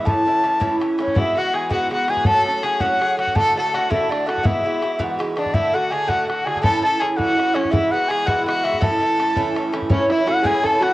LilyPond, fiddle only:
\new Staff \with { instrumentName = "Fiddle" } { \time 6/8 \key a \major \tempo 4. = 110 r2 r8 cis'8 | e'8 fis'8 gis'8 fis'8 fis'8 gis'8 | a'4 gis'8 fis'8 gis'8 fis'8 | a'8 a'8 fis'8 e'8 d'8 fis'8 |
e'4. r4 d'8 | e'8 fis'8 gis'8 fis'8 fis'8 gis'8 | a'8 a'8 gis'8 fis'4 cis'8 | e'8 fis'8 gis'8 fis'8 fis'4 |
a'2~ a'8 r8 | cis'8 e'8 fis'8 gis'8 a'8 fis'8 | }